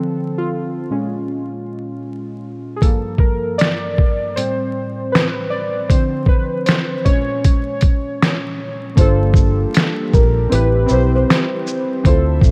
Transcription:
0.00 0.85 D3 soft
0.00 0.86 F3 soft
0.00 0.86 C4 medium
0.00 0.39 A4 medium
0.38 2.40 F4 medium
0.90 2.78 A#2 soft
0.90 2.79 G#3 soft
0.90 2.79 C#4 medium
2.76 2.82 G#4 medium
2.82 3.94 G2 soft
2.82 3.94 F3 soft
2.82 3.94 A#3 medium
2.82 3.21 A4 medium
2.82 kick loud
2.82 closed hi-hat medium
3.18 3.60 A#4 medium
3.18 kick medium
3.58 4.31 D5 loud
3.58 finger snap medium
3.58 snare loud
3.58 closed hi-hat soft
3.98 kick medium
4.36 5.48 A2 soft
4.36 5.48 G3 soft
4.36 5.48 C4 medium
4.36 5.15 C5 medium
4.36 closed hi-hat medium
5.12 5.52 B4 medium
5.12 finger snap medium
5.12 snare loud
5.12 closed hi-hat medium
5.50 5.90 D5 medium
5.89 7.01 D3 soft
5.89 7.01 F3 soft
5.89 7.02 C4 medium
5.89 6.29 C5 medium
5.89 kick medium
5.89 closed hi-hat medium
6.26 6.68 B4 medium
6.26 kick medium
6.66 7.02 C5 medium
6.66 finger snap medium
6.66 snare loud
6.66 closed hi-hat medium
7.05 8.93 A#2 medium
7.05 8.94 G#3 soft
7.05 8.94 C#4 medium
7.05 8.55 C#5 medium
7.05 kick medium
7.05 closed hi-hat soft
7.44 kick medium
7.44 closed hi-hat medium
7.81 kick medium
7.81 closed hi-hat soft
8.22 finger snap medium
8.22 snare loud
8.22 closed hi-hat medium
8.96 9.64 G1 loud
8.96 10.50 F3 medium
8.96 12.02 G3 medium
8.96 10.05 A#3 medium
8.96 10.50 A#3 medium
8.96 10.05 D4 medium
8.96 10.06 F4 medium
8.96 12.02 G4 medium
8.96 10.09 C5 medium
8.96 kick loud
8.96 closed hi-hat medium
9.01 10.07 A4 medium
9.34 kick medium
9.34 shaker soft
9.74 finger snap loud
9.74 snare loud
9.74 closed hi-hat medium
10.14 10.47 A#1 medium
10.14 10.48 A#4 medium
10.14 kick loud
10.14 shaker soft
10.49 10.85 A1 loud
10.49 10.83 C4 medium
10.49 12.03 C4 medium
10.49 10.84 E4 medium
10.49 10.85 G4 medium
10.49 11.11 B4 medium
10.49 closed hi-hat medium
10.55 10.86 B4 medium
10.86 11.67 C4 medium
10.86 11.68 E4 medium
10.86 11.69 G4 medium
10.86 shaker soft
10.91 11.24 B1 medium
10.91 11.70 C5 medium
11.15 12.01 C5 medium
11.30 finger snap medium
11.30 snare loud
11.30 closed hi-hat medium
11.67 shaker medium
12.04 12.39 D2 loud
12.04 12.51 F3 medium
12.04 12.51 C4 medium
12.04 12.51 D4 medium
12.04 12.51 E4 medium
12.04 12.51 F4 medium
12.04 12.51 C5 loud
12.04 12.51 E5 medium
12.04 kick loud
12.04 closed hi-hat medium
12.09 12.51 A4 medium
12.41 12.51 A1 medium
12.41 kick loud
12.41 shaker soft

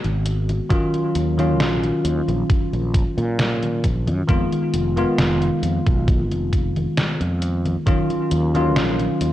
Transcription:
0.04 0.59 G#1 medium
0.04 closed hi-hat soft
0.04 high conga soft
0.26 closed hi-hat medium
0.49 closed hi-hat soft
0.49 high conga medium
0.69 1.33 D#3 loud
0.69 1.33 F#3 medium
0.69 1.33 C#4 medium
0.69 1.33 F4 loud
0.69 kick loud
0.69 closed hi-hat medium
0.69 high conga soft
0.94 closed hi-hat soft
0.94 high conga soft
1.15 1.60 D#2 loud
1.15 closed hi-hat medium
1.38 1.51 D#3 medium
1.38 1.52 F#3 medium
1.38 1.52 C#4 medium
1.38 1.52 F4 loud
1.38 closed hi-hat soft
1.38 high conga medium
1.60 1.90 A#1 medium
1.60 snare loud
1.60 closed hi-hat medium
1.60 high conga soft
1.84 closed hi-hat soft
1.84 high conga soft
2.05 2.20 D#2 medium
2.05 closed hi-hat medium
2.28 2.42 A#1 loud
2.28 closed hi-hat soft
2.28 high conga medium
2.50 kick loud
2.50 closed hi-hat medium
2.50 high conga soft
2.73 3.02 A#1 medium
2.73 closed hi-hat soft
2.73 high conga soft
2.94 kick loud
2.94 closed hi-hat medium
3.17 3.85 A#2 loud
3.17 closed hi-hat soft
3.17 high conga medium
3.39 snare loud
3.39 closed hi-hat medium
3.39 high conga soft
3.63 closed hi-hat soft
3.63 high conga soft
3.84 4.09 A#1 medium
3.84 kick medium
3.84 closed hi-hat medium
4.07 4.21 F#2 loud
4.07 closed hi-hat soft
4.07 high conga medium
4.27 4.44 F2 medium
4.27 4.91 D#3 medium
4.27 4.91 G#3 medium
4.27 4.91 B3 medium
4.27 4.92 F4 loud
4.27 kick loud
4.27 closed hi-hat medium
4.27 high conga soft
4.52 closed hi-hat soft
4.52 high conga soft
4.73 5.04 F1 loud
4.73 closed hi-hat loud
4.96 5.10 D#3 medium
4.96 5.10 G#3 medium
4.96 5.10 B3 medium
4.96 5.11 F4 loud
4.96 closed hi-hat soft
4.96 high conga medium
5.18 5.48 F1 medium
5.18 snare loud
5.18 closed hi-hat medium
5.18 high conga soft
5.42 closed hi-hat soft
5.42 high conga soft
5.62 5.78 F2 medium
5.62 closed hi-hat medium
5.86 6.31 B1 loud
5.86 kick loud
5.86 closed hi-hat soft
5.86 high conga medium
6.08 kick loud
6.08 closed hi-hat medium
6.08 high conga soft
6.31 6.86 F1 medium
6.31 closed hi-hat soft
6.31 high conga soft
6.53 kick medium
6.53 closed hi-hat medium
6.76 closed hi-hat soft
6.76 high conga medium
6.97 snare loud
6.97 closed hi-hat medium
6.97 high conga soft
7.21 7.75 F2 medium
7.21 closed hi-hat soft
7.21 high conga soft
7.42 closed hi-hat medium
7.66 closed hi-hat soft
7.66 high conga medium
7.86 8.49 D#3 medium
7.86 8.50 F#3 medium
7.86 8.50 C#4 medium
7.86 8.50 F4 loud
7.86 kick loud
7.86 closed hi-hat medium
7.86 high conga soft
8.10 closed hi-hat soft
8.10 high conga soft
8.31 8.76 D#2 loud
8.31 closed hi-hat medium
8.55 8.68 D#3 medium
8.55 8.68 F#3 medium
8.55 8.69 C#4 medium
8.55 8.69 F4 loud
8.55 closed hi-hat soft
8.55 high conga medium
8.76 9.07 A#1 medium
8.76 snare loud
8.76 closed hi-hat medium
8.76 high conga soft
9.00 closed hi-hat soft
9.00 high conga soft
9.21 9.33 D#2 medium
9.21 closed hi-hat medium

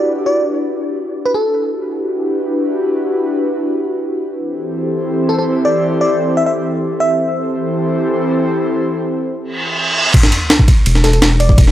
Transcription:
0.00 1.50 D4 medium
0.00 1.50 E4 medium
0.00 1.50 F#4 medium
0.00 1.50 G4 medium
0.00 1.50 B4 loud
0.00 0.12 D5 medium
0.26 0.48 D5 medium
1.25 1.32 B4 medium
1.34 1.70 A4 medium
1.52 4.37 D4 medium
1.52 4.37 E4 medium
1.52 4.37 F#4 medium
1.52 4.37 G4 medium
1.52 4.37 B4 loud
4.39 7.25 E3 medium
4.39 7.25 C4 medium
4.39 7.25 E4 medium
4.39 7.25 G4 medium
4.39 7.25 A4 medium
4.39 7.25 C5 loud
5.29 5.35 A4 medium
5.39 5.44 A4 medium
5.65 5.87 D5 medium
6.01 6.35 D5 medium
6.37 6.43 E5 medium
6.46 6.52 E5 medium
7.00 7.50 E5 medium
7.27 10.12 E3 medium
7.27 10.12 C4 medium
7.27 10.12 E4 medium
7.27 10.12 G4 medium
7.27 10.12 A4 medium
7.27 10.12 C5 loud
9.42 reverse cymbal medium
10.14 kick loud
10.14 crash medium
10.14 ride medium
10.14 sub drop medium
10.23 snare medium
10.32 ride medium
10.50 snare loud
10.50 ride medium
10.59 kick medium
10.68 kick medium
10.68 ride medium
10.86 11.21 E1 loud
10.86 ride medium
10.95 snare soft
11.04 11.10 A4 medium
11.04 snare soft
11.04 ride medium
11.13 11.19 A4 medium
11.13 ride soft
11.22 11.57 E1 loud
11.22 snare loud
11.22 ride medium
11.40 11.62 D5 medium
11.40 ride medium
11.49 kick medium
11.58 11.71 E1 loud
11.58 kick loud
11.58 ride medium
11.67 snare soft

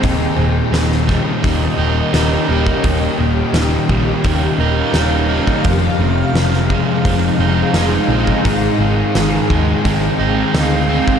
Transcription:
0.00 0.26 D#1 medium
0.00 1.78 D#2 medium
0.00 1.78 D#4 medium
0.00 2.13 D#4 medium
0.00 5.61 G4 medium
0.00 kick loud
0.00 open hi-hat medium
0.04 5.61 C#4 medium
0.04 2.82 D#5 medium
0.37 0.60 D#1 medium
0.37 2.14 A#2 medium
0.72 1.18 D#1 medium
0.72 1.42 D#3 medium
0.72 snare loud
0.72 open hi-hat medium
0.92 snare soft
1.08 2.84 G3 medium
1.08 kick medium
1.08 snare soft
1.43 1.67 D#1 medium
1.43 3.19 D#3 medium
1.43 2.49 A#3 medium
1.43 kick loud
1.43 open hi-hat medium
1.78 2.01 D#1 medium
1.78 2.47 A#3 medium
1.78 4.59 D#4 medium
2.13 2.36 D#1 medium
2.13 3.87 G3 medium
2.13 4.94 D#4 medium
2.13 snare loud
2.13 open hi-hat soft
2.48 2.72 D#1 medium
2.48 4.24 A#3 medium
2.67 kick medium
2.84 3.07 D#1 medium
2.84 4.59 D#2 medium
2.84 8.42 F5 medium
2.84 kick loud
2.84 open hi-hat medium
3.18 3.42 D#1 medium
3.18 4.94 A#2 medium
3.53 3.76 D#1 medium
3.53 4.22 D#3 medium
3.53 snare loud
3.53 open hi-hat medium
3.89 4.12 A#1 medium
3.89 5.65 G3 medium
3.89 kick medium
4.24 4.47 D#1 medium
4.24 5.64 D#3 medium
4.24 5.28 A#3 medium
4.24 kick loud
4.24 open hi-hat soft
4.58 4.82 D#1 medium
4.58 5.27 A#3 medium
4.58 5.67 D#4 medium
4.93 5.39 D#1 medium
4.93 5.65 G3 medium
4.93 5.66 D#4 medium
4.93 snare loud
4.93 open hi-hat soft
5.28 5.64 A#3 medium
5.47 kick medium
5.63 5.87 F1 medium
5.63 7.39 F2 medium
5.63 8.42 D#4 medium
5.63 11.19 G#4 medium
5.63 kick loud
5.63 open hi-hat medium
5.99 6.22 F1 medium
5.99 7.75 C3 medium
6.34 6.80 F1 medium
6.34 7.04 F3 medium
6.34 snare loud
6.34 open hi-hat medium
6.53 snare soft
6.70 8.45 G#3 medium
6.70 kick medium
7.04 7.27 F1 medium
7.04 8.45 F3 medium
7.04 8.09 C4 medium
7.04 kick loud
7.04 open hi-hat medium
7.39 7.62 F1 medium
7.39 8.08 C4 medium
7.39 10.19 D#4 medium
7.73 7.97 F1 medium
7.73 8.45 G#3 medium
7.73 10.54 D#4 medium
7.73 snare loud
7.73 open hi-hat medium
8.08 8.32 A#1 medium
8.08 8.44 C4 medium
8.27 kick medium
8.43 8.68 G#1 medium
8.43 10.19 G#2 medium
8.43 11.19 C4 medium
8.43 11.19 G5 medium
8.43 kick loud
8.43 open hi-hat medium
8.79 9.02 G#1 medium
8.79 9.14 D#3 medium
9.15 9.38 G#1 medium
9.15 9.83 D#3 medium
9.15 snare loud
9.15 open hi-hat soft
9.49 9.73 D#2 medium
9.49 11.19 G#3 medium
9.49 kick medium
9.84 10.08 G#1 medium
9.84 11.19 D#3 medium
9.84 10.88 C4 medium
9.84 kick loud
9.84 open hi-hat soft
10.19 10.42 G#1 medium
10.19 10.88 C4 medium
10.19 11.19 D#4 medium
10.54 11.00 D2 medium
10.54 11.19 G#3 medium
10.54 11.19 D#4 medium
10.54 snare loud
10.54 open hi-hat soft
10.59 11.19 F5 medium
10.89 11.19 C4 medium
11.08 kick medium

